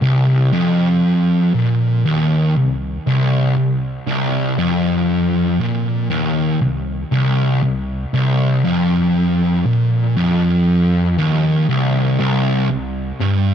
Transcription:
distorted electric guitar
0.02 C2
0.53 F2
1.54 A#2
2.06 D#2
2.56 C2
3.07 C2
3.57 C2
4.07 C2
4.58 F2
5.60 A#2
6.10 D#2
6.61 C2
7.12 C2
7.63 C2
8.14 C2
8.65 F2
9.66 A#2
10.17 F2
11.18 D#2
11.69 C2
12.20 C2
12.70 C2
13.20 G2

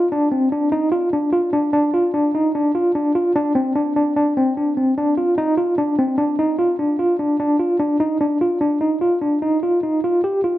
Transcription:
tine electric piano
0.12 D4
0.32 C4
0.52 D4
0.72 D#4
0.92 F4
1.13 D4
1.33 F4
1.53 D4
1.73 D4
1.94 F4
2.14 D4
2.35 D#4
2.55 D4
2.75 F4
2.95 D4
3.15 F4
3.36 D4
3.55 C4
3.76 D4
3.96 D4
4.16 D4
4.37 C4
4.57 D4
4.77 C4
4.98 D4
5.17 F4
5.38 D#4
5.57 F4
5.78 D4
5.99 C4
6.18 D4
6.39 D#4
6.59 F4
6.79 D4
6.99 F4
7.19 D4
7.40 D4
7.60 F4
7.80 D4
8.00 D#4
8.21 D4
8.41 F4
8.61 D4
8.81 D#4
9.01 F4
9.21 D4
9.42 D#4
9.63 F4
9.83 D#4
10.04 F4
10.24 G4
10.44 F4

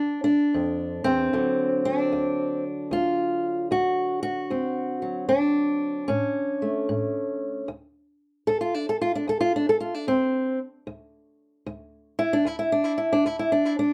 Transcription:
steel-string acoustic guitar
Already playing: G2 D4
0.24 D4
0.54 F2
1.04 E2 C4
1.33 D2 D3 F#3
1.85 D4
2.12 D2
2.91 D2 F4
3.71 D2 F#4
4.23 F#4
4.50 D2 C4
5.02 F#3
5.29 D2 D4
6.08 A2 C#4
6.62 A3
6.89 A2
7.68 D2
8.47 D2 A4
8.61 F4
8.74 D4
8.89 A4
9.02 F4
9.15 D4
9.28 D2 A4
9.41 F4
9.56 D4
9.69 A4
9.80 F4
9.94 D4
10.07 D2 C4
10.87 D2
11.66 D2
12.19 E4
12.33 D4
12.45 D2 E4
12.59 E4
12.72 D4
12.84 E4
12.98 E4
13.13 D4
13.25 D2 E4
13.39 E4
13.52 D4
13.65 E4
13.79 D4

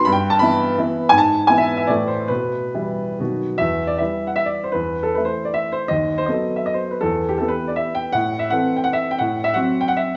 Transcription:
grand piano
0.05 G2 B5
0.12 G5
0.30 A5
0.39 E3 B3 E4 B5
0.78 E3 B3 E4
1.09 G#2 G#5
1.18 A5
1.47 E3 B3 E4 G#5
1.58 E5
1.77 E5
1.87 A2 E3 A3 E4 D5
2.08 C5
2.28 B2 B4
2.74 E3 G3 E4
3.19 B2 D#3 F#3 F#4
3.58 E2 E5
3.87 D5
3.98 E3 G3 E4 E5
4.27 F#5
4.36 E5
4.46 D5
4.64 C5
4.72 E2 B4
5.03 A4
5.15 E3 A3 E4 B4
5.25 C5
5.45 D5
5.54 E5
5.72 C5
5.88 D#2 D#5
6.18 C5
6.26 F#3 B3 A4 D#5
6.56 E5
6.66 D#5
6.74 C5
6.91 B4
7.01 E2 A4
7.29 G4
7.38 E3 B3 G4 A4
7.48 B4
7.68 D5
7.76 E5
7.95 G5
8.12 A2 F#5
8.39 E5
8.50 E3 C4 A4 F#5
8.76 G5
8.84 F#5
8.93 E5
9.11 G5
9.18 A2 F#5
9.44 E5
9.54 F#3 C4 F#4 F#5
9.81 G5
9.88 F#5
9.97 E5

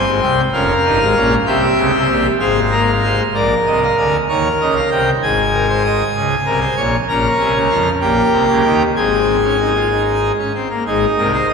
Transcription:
pipe organ
Already playing: C4 C5 G#5
0.06 G#1 G#2
0.21 C2 C3 G5
0.53 F1 F2 C#4 A#4 F5
0.84 G1 G2 D#4
1.00 G#1 G#2
1.16 A#1 A#2 C#4
1.46 C2 C3 C4 G4 E5
1.77 C#2 C#3
1.93 C2 C3
2.08 A#1 A#2
2.39 G#1 G#2 C4 G#4 F5
2.71 A#3 A#4
3.03 G#3 C5
3.34 A#1 A#2 A#4 D5
3.66 C2 C3 D#5
3.83 F5
3.97 D2 D3 G#5
4.29 D#2 D#3 A#4 C#5
4.61 C#2 C#3 D#5
4.76 F5
4.91 C2 C3 G5
5.22 G#1 G#2 G#4 G#5
5.54 A#4
5.69 C5
5.85 D#5
6.16 C#2 C#3 G#4
6.45 C2 C3 A#4
6.61 C5
6.77 A#1 A#2 C#5
7.08 A#1 A#2 C#4 A#4 A#5
7.39 C2 C3 G#5
7.54 C#2 C#3
7.70 F2 F3 F5
8.01 A#1 A#2 A#3 G4 G5
8.32 C2 C3
8.48 C#2 C#3
8.64 D#2 D#3
8.96 G#1 G#2 C4 G#4 G#5
9.44 C#4
9.60 D#4
9.76 F4
9.91 D#4
10.38 C#4
10.55 C4
10.70 A#3
10.86 G#1 G#2 D#4 G#4
11.18 C2 C3 A#4
11.33 C5
11.49 A#1 A#2 D#5

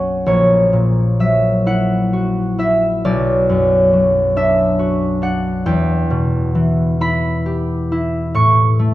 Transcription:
harp
Already playing: B1 F#2 A#3 C#4 F#4 C#5 F#5
0.26 A#1 C#5
0.73 A#2
1.20 F#3 E5
1.66 E4 F#5
2.13 F#4
2.58 E4 E5
3.05 B1 D5
3.49 F#2
3.93 F#3
4.36 D4 E5
4.79 F#4
5.22 D4 F#5
5.66 E2 G5
6.10 B2
6.55 E3
7.01 E4 B5
7.46 G4
7.92 E4
8.34 A2 C#6
8.79 A3

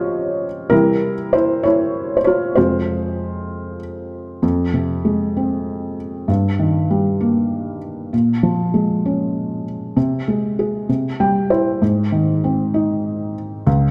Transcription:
felt piano
Already playing: C#3 F3 C4 F4 G4 C5 C#5 D#5
0.70 C3 E3 G3 E4 A#4
1.33 E4 C5
1.63 E4 C#5
2.17 C5
2.24 F4 C#5
2.55 F2 C3 G#3 F4 C5
4.42 F2
4.74 C3
5.05 G#3
5.37 C4
6.28 G2
6.59 D#3
6.91 G3
7.21 A#3
8.13 A#2
8.43 F3
8.74 G#3
9.06 C#4
9.97 C3
10.28 G#3
10.59 G#4
10.89 C3
11.20 G3 G5
11.50 E4 C5
11.82 G#2
12.12 D#3
12.44 C4
12.74 D#4
13.67 C#2

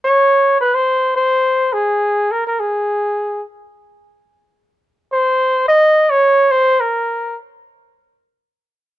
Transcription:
flugelhorn
0.05 C#5
0.61 B4
0.75 C5
1.16 C5
1.73 G#4
2.32 A#4
2.47 A#4
2.60 G#4
5.13 C5
5.68 D#5
6.10 C#5
6.51 C5
6.80 A#4

